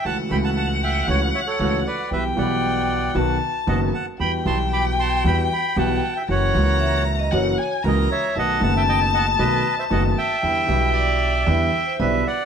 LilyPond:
<<
  \new Staff \with { instrumentName = "Violin" } { \time 4/4 \key e \minor \tempo 4 = 116 fis''1 | g''2 a''4. r8 | g''1 | ais''2 fis''8 gis''8 ais''4 |
a''1 | g''4 d''4 e''4. r8 | }
  \new Staff \with { instrumentName = "Bandoneon" } { \time 4/4 \key e \minor << { a''8 b''16 a''16 a''8 g''8 fis''8 e''16 cis''8. d''8 | e''8 fis''2 r8 fis''8 a''8 | b''8 c'''8 d'''8 c'''8 b''8 b''8 a''8. g''16 | fis''4. r4. dis''8 e''8 |
fis''8 a''16 g''16 g''8 fis''8 dis''8. e''16 fis''8 g''8~ | g''2. e''8 fis''8 | } \\ { fis''8 g''16 fis''16 fis''8 e''8 cis''8 cis''16 a'8. b'8 | b'8 d''4. r4 dis''8 fis''8 | g''8 a''8 b''8 a''8 g''8 g''8 fis''8. e''16 | cis''4. r4. ais'8 cis''8 |
dis''8 fis''16 e''16 dis''8 dis''8 b'8. c''16 dis''8 e''8~ | e''2. b'8 d''8 | } >> }
  \new Staff \with { instrumentName = "Vibraphone" } { \time 4/4 \key e \minor r1 | r1 | r1 | r4 e''8. dis''16 cis''8. r4 r16 |
r1 | r8 b'8 d''4 e''8. c''16 d''4 | }
  \new Staff \with { instrumentName = "Grand piano" } { \clef bass \time 4/4 \key e \minor <cis, cis e a cis' fis'>8 <cis, cis e a cis' fis'>4. <cis, cis e a cis' fis'>8 r8 <cis, cis e a cis' fis'>8 r8 | <b,, b, e g b g'>8 <b,, b, e g b g'>4. <b,, b, dis fis b fis'>8 r8 <fis,, fis, dis fis b fis'>8 r8 | <e, e g b fis'>8 <b,, b, e fis g b>4. <e, e g b fis'>8 r8 <b,, b, e g b fis'>8 r8 | <fis, e fis ais cis' fis'>8 <cis, cis e ais cis' fis'>4. <fis, e fis ais cis' fis'>8 r8 <cis, cis e ais cis' fis'>8 r8 |
<b,, b, dis a b fis'>8 <fis,, fis, dis a b fis'>4. <b,, b, dis a b fis'>8 r8 <fis,, fis, dis a b fis'>8 r8 | <e, d e g b e'>8 <b,, b, d g b e'>4. <e, d e g b e'>8 r8 <b,, b, d g b e'>8 r8 | }
  \new Staff \with { instrumentName = "Upright bass" } { \clef bass \time 4/4 \key e \minor cis,8 cis,4. cis,8 r8 cis,8 r8 | b,,8 b,,4. b,,8 r8 fis,,8 r8 | e,8 b,,4. e,8 r8 b,,8 r8 | fis,,8 cis,4. fis,,8 r8 cis,8 r8 |
b,,8 fis,,4. b,,8 r8 fis,,8 r8 | e,8 b,,4. e,8 r8 b,,8 r8 | }
>>